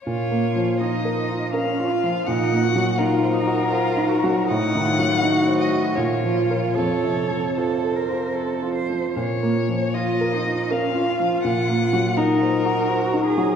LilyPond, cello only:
\new Staff \with { instrumentName = "Cello" } { \time 3/4 \key bes \minor \tempo 4 = 81 f'4 ees'4 des'8 f'8 | ees'8 ges'8 f'8 ees'8 f'8 ges'8 | ees'8 f'8 fis'4 f'4 | a'4 a'8 bes'8 a'8 c''8 |
r4 f'8 ees'8 des'8 f'8~ | f'4 ees'4 ges'8 aes'8 | }